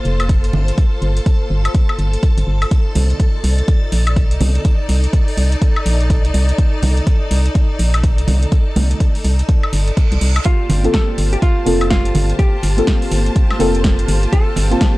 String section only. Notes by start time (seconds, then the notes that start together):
Already playing: A#3 F4 C5
2.71 D#4
2.92 D5
10.46 F4
10.57 A#3
10.90 C5
11.23 A5